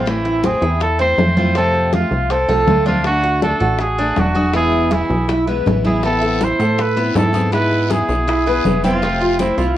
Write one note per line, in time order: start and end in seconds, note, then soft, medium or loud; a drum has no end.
0.00 0.56 A1 medium
0.00 0.09 F4 medium
0.06 0.42 E3 medium
0.06 0.42 A3 medium
0.06 0.43 C4 medium
0.06 0.44 E4 medium
0.06 0.47 E4 medium
0.06 high bongo medium
0.06 high conga soft
0.25 0.43 E4 medium
0.25 high bongo soft
0.25 high conga soft
0.43 0.79 E3 soft
0.43 0.80 A3 soft
0.43 0.62 C4 medium
0.43 0.80 C4 soft
0.43 0.81 E4 soft
0.43 0.82 G#4 medium
0.43 high bongo medium
0.43 high conga medium
0.62 1.14 E2 medium
0.62 0.99 E4 medium
0.62 high bongo soft
0.81 0.99 A4 medium
0.81 muted steel-string acoustic guitar stroke medium
0.81 high bongo medium
0.81 high conga soft
0.99 1.18 A3 medium
0.99 1.36 C4 medium
0.99 1.18 C4 medium
0.99 1.18 E4 medium
0.99 1.53 C5 medium
0.99 high conga soft
1.18 2.06 F2 medium
1.18 1.36 E3 soft
1.18 1.37 A3 soft
1.18 1.37 C4 medium
1.18 1.36 E4 soft
1.18 high bongo soft
1.18 low bongo medium
1.18 high conga medium
1.37 1.56 A3 medium
1.37 1.56 C4 medium
1.37 1.55 E4 medium
1.37 1.55 F4 medium
1.37 high bongo soft
1.37 high conga medium
1.55 1.92 C3 medium
1.55 1.92 F3 medium
1.55 1.93 A3 medium
1.55 1.92 C4 medium
1.55 1.93 C4 medium
1.55 1.94 F4 medium
1.55 1.96 A4 loud
1.55 high bongo medium
1.55 high conga soft
1.74 high bongo soft
1.74 high conga soft
1.93 2.30 F3 soft
1.93 2.30 A3 soft
1.93 2.30 C4 soft
1.93 2.30 F4 medium
1.93 2.33 F4 medium
1.93 2.31 F4 soft
1.93 high bongo medium
1.93 high conga medium
2.11 2.46 C2 medium
2.11 high bongo soft
2.11 high conga soft
2.30 2.49 C4 medium
2.30 2.87 A4 medium
2.30 muted steel-string acoustic guitar stroke medium
2.30 high bongo medium
2.30 high conga soft
2.48 2.66 C2 medium
2.48 2.66 F3 medium
2.48 2.67 A3 medium
2.48 2.67 C4 medium
2.48 2.67 F4 medium
2.48 2.85 A4 medium
2.48 high conga soft
2.67 3.55 D2 medium
2.67 2.86 F3 soft
2.67 2.86 A3 soft
2.67 2.86 C4 medium
2.67 2.86 F4 medium
2.67 high bongo soft
2.67 low bongo medium
2.67 high conga medium
2.86 3.04 F3 medium
2.86 3.04 A3 medium
2.86 3.05 C4 medium
2.86 3.22 D4 medium
2.86 3.05 F4 medium
2.86 3.04 F4 medium
2.86 high bongo soft
2.86 high conga medium
3.04 3.41 D3 medium
3.04 3.42 A3 medium
3.04 3.42 D4 medium
3.04 3.40 F#4 loud
3.04 3.43 F#4 medium
3.04 high bongo medium
3.04 high conga soft
3.23 3.42 F#4 medium
3.23 high bongo soft
3.23 high conga soft
3.42 3.79 D3 soft
3.42 3.79 A3 soft
3.42 3.60 D4 medium
3.42 3.80 D4 soft
3.42 3.80 F#4 soft
3.42 3.82 A4 medium
3.42 high bongo medium
3.42 high conga medium
3.60 4.13 A1 medium
3.60 3.97 F#4 medium
3.60 high bongo soft
3.78 4.21 G#4 loud
3.78 muted steel-string acoustic guitar stroke medium
3.78 high bongo medium
3.78 high conga soft
3.98 4.17 A3 soft
3.98 4.35 D4 medium
3.98 4.17 D4 medium
3.98 4.16 F#4 medium
3.98 high conga soft
4.16 5.04 E1 medium
4.16 4.35 D3 soft
4.16 4.36 A3 medium
4.16 4.35 D4 medium
4.16 4.33 F#4 soft
4.16 4.56 F#4 medium
4.16 high bongo soft
4.16 low bongo medium
4.16 high conga medium
4.34 4.54 A3 medium
4.34 4.54 D4 medium
4.34 4.53 F#4 medium
4.34 4.54 G#4 medium
4.34 high bongo soft
4.34 high conga medium
4.54 4.91 B2 medium
4.54 4.90 E3 medium
4.54 4.90 G#3 medium
4.54 4.91 B3 medium
4.54 4.90 E4 medium
4.54 4.92 E4 medium
4.54 4.95 G#4 loud
4.54 high bongo medium
4.54 high conga soft
4.72 high bongo soft
4.72 high conga soft
4.91 5.28 E3 soft
4.91 5.28 G#3 soft
4.91 5.28 B3 soft
4.91 5.29 E4 medium
4.91 5.59 E4 medium
4.91 5.28 G#4 medium
4.91 high bongo medium
4.91 high conga medium
5.10 5.62 B1 loud
5.10 high bongo soft
5.10 high conga soft
5.29 5.47 E4 medium
5.29 muted steel-string acoustic guitar stroke medium
5.29 high bongo medium
5.29 high conga soft
5.47 5.65 E3 soft
5.47 5.66 G#3 medium
5.47 5.66 B3 medium
5.47 5.66 E4 medium
5.47 5.84 B4 medium
5.47 high conga soft
5.66 6.54 A1 medium
5.66 5.84 E3 soft
5.66 5.85 G#3 soft
5.66 5.84 B3 soft
5.66 5.84 E4 soft
5.66 high bongo soft
5.66 low bongo medium
5.66 high conga medium
5.84 6.02 E3 medium
5.84 6.04 G#3 medium
5.84 6.03 B3 medium
5.84 6.21 E4 medium
5.84 6.03 E4 medium
5.84 6.03 G#4 medium
5.84 high bongo soft
5.84 high conga medium
6.03 6.39 E3 medium
6.03 6.41 B3 medium
6.03 6.40 C4 medium
6.03 6.41 E4 medium
6.03 6.45 A4 loud
6.03 high bongo medium
6.03 high conga soft
6.03 long guiro medium
6.21 6.40 A4 medium
6.21 high bongo soft
6.21 high conga soft
6.41 6.77 E3 soft
6.41 6.77 C4 soft
6.41 6.59 E4 medium
6.41 6.78 E4 soft
6.41 6.82 C5 medium
6.41 high bongo medium
6.41 high conga medium
6.41 short guiro medium
6.59 7.11 A2 medium
6.59 6.96 A4 medium
6.59 high bongo soft
6.59 short guiro medium
6.78 7.17 B4 medium
6.78 muted steel-string acoustic guitar stroke medium
6.78 high bongo medium
6.78 high conga soft
6.78 long guiro medium
6.96 7.15 B3 medium
6.96 7.15 C4 medium
6.96 7.15 E4 medium
6.96 7.33 E4 medium
6.96 high conga soft
7.15 8.03 G#2 loud
7.15 7.33 E3 soft
7.15 7.33 B3 medium
7.15 7.34 C4 soft
7.15 7.32 E4 medium
7.15 7.51 A4 medium
7.15 high bongo soft
7.15 low bongo medium
7.15 high conga medium
7.15 short guiro medium
7.33 7.52 B3 medium
7.33 7.52 C4 medium
7.33 7.52 E4 medium
7.33 7.52 G#4 medium
7.33 high bongo soft
7.33 high conga medium
7.33 short guiro medium
7.52 7.89 G#3 medium
7.52 7.90 B3 medium
7.52 7.89 E4 medium
7.52 7.90 E4 medium
7.52 7.93 B4 loud
7.52 high bongo medium
7.52 long guiro medium
7.72 high bongo soft
7.72 high conga soft
7.90 8.26 G#3 soft
7.90 8.26 B3 soft
7.90 8.27 E4 medium
7.90 8.26 G#4 medium
7.90 8.84 G#4 medium
7.90 high bongo medium
7.90 high conga medium
7.90 short guiro medium
8.09 8.61 B1 loud
8.09 high bongo soft
8.09 high conga soft
8.09 short guiro medium
8.27 8.46 E4 medium
8.27 muted steel-string acoustic guitar stroke medium
8.27 high bongo medium
8.27 high conga soft
8.27 long guiro medium
8.47 8.65 B3 medium
8.47 8.64 E4 medium
8.47 8.83 B4 medium
8.47 high conga soft
8.65 9.52 F1 loud
8.65 8.83 G#3 medium
8.65 8.84 B3 soft
8.65 8.83 E4 medium
8.65 high bongo soft
8.65 low bongo medium
8.65 high conga medium
8.65 short guiro medium
8.84 9.03 B3 medium
8.84 9.20 C4 medium
8.84 9.02 E4 medium
8.84 9.36 F4 medium
8.84 high bongo soft
8.84 high conga medium
8.84 short guiro medium
9.02 9.39 C3 medium
9.02 9.39 F3 medium
9.02 9.39 A3 medium
9.02 9.40 C4 medium
9.02 9.40 F4 medium
9.02 high bongo medium
9.02 high conga soft
9.02 long guiro medium
9.21 9.39 F4 medium
9.21 high bongo soft
9.21 high conga soft
9.39 9.76 F3 soft
9.39 9.77 A3 soft
9.39 9.57 C4 medium
9.39 9.77 C4 soft
9.39 9.75 E4 medium
9.39 high bongo medium
9.39 high conga medium
9.39 short guiro medium
9.58 9.78 C2 medium
9.58 9.78 F4 medium
9.58 high bongo soft
9.58 short guiro medium